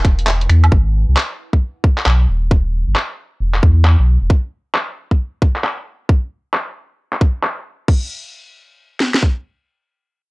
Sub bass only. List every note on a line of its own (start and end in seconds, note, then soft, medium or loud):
0.05 0.48 E1 medium
0.49 0.69 E2 medium
0.72 1.05 G#1 loud
1.09 1.16 C2 medium
2.06 2.26 B1 medium
2.29 2.84 D#1 loud
2.87 2.95 G1 medium
3.40 3.60 E1 medium
3.63 3.96 E2 medium
3.99 4.18 B1 loud
4.22 4.29 E1 medium